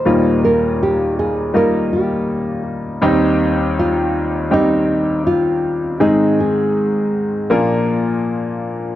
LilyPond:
<<
  \new Staff \with { instrumentName = "Nylon-string guitar" } { \time 4/4 \key ees \major \tempo 4 = 80 c''8 bes'8 g'8 aes'8 bes'8 g'4 r8 | r4 f'4 ees'4 f'4 | ees'8 aes'2. r8 | }
  \new Staff \with { instrumentName = "Grand piano" } { \time 4/4 \key ees \major <g bes ees' f'>2 <g bes ees' f'>2 | <g c' ees' g'>2 <g c' ees' g'>2 | <aes c' ees' aes'>2 <bes d' f' bes'>2 | }
  \new Staff \with { instrumentName = "Grand piano" } { \clef bass \time 4/4 \key ees \major <ees, bes,>1 | <ees, ees>1 | <aes, ees>2 <bes, f>2 | }
>>